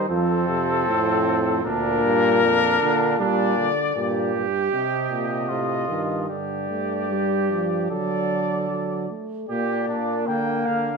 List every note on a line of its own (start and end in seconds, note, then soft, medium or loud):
0.09 0.86 F2 medium
0.09 0.47 F3 medium
0.09 1.62 C4 medium
0.09 1.62 A4 medium
0.48 0.86 C3 medium
0.87 1.64 F2 medium
0.87 1.63 A2 medium
1.65 2.03 D2 medium
1.65 2.79 A#2 loud
1.65 2.41 D4 medium
1.65 3.16 A#4 loud
2.04 2.45 G2 medium
2.43 2.82 F2 medium
2.43 3.18 D4 medium
2.81 3.19 A#2 medium
2.81 3.18 D3 medium
3.19 3.69 A#2 medium
3.19 3.57 G3 medium
3.19 3.68 D4 medium
3.19 4.42 D5 medium
3.58 3.95 D3 medium
3.96 4.32 G2 medium
3.96 4.44 A#2 medium
3.96 5.51 G4 medium
4.35 4.72 G2 medium
4.72 5.91 C3 medium
4.72 5.10 C3 medium
4.72 6.25 D#5 medium
5.10 5.49 A#2 medium
5.49 5.88 A2 medium
5.49 6.28 F4 medium
5.89 6.28 G2 medium
5.89 6.31 D#3 medium
6.29 7.87 G2 medium
6.29 6.69 D3 medium
6.29 7.87 G4 medium
6.29 7.87 D5 medium
6.70 7.09 A3 medium
7.10 7.50 G3 medium
7.51 7.90 F3 medium
7.90 9.07 D3 medium
7.90 8.68 F#3 medium
7.90 9.07 A4 medium
7.90 9.07 D5 medium
8.70 9.09 F#3 soft
9.10 9.48 A3 medium
9.49 9.86 A#2 medium
9.49 10.97 A#3 medium
9.49 9.86 G4 medium
9.49 10.23 D5 medium
9.88 10.27 A#2 medium
9.88 10.29 D4 medium
10.27 10.66 D3 medium
10.27 10.97 A#3 medium
10.27 10.68 G5 medium
10.66 10.97 D3 medium
10.66 10.97 F5 medium